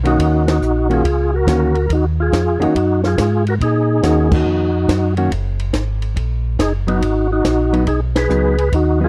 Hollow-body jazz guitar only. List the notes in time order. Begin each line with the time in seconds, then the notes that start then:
0.04 D#3 A#3 C#4 F#4
0.90 D#3 A#3 C#4 F#4
1.47 D#3 A#3 C#4 F#4
2.60 D#3 A#3 C#4 F#4
4.03 D#3 A#3 C#4 F#4
5.17 D#3 A#3 C#4 F#4
6.87 F#3 B3 D#4
7.73 F#3 B3 D#4
8.29 F#3 B3 D#4
9.00 F#3 B3 D#4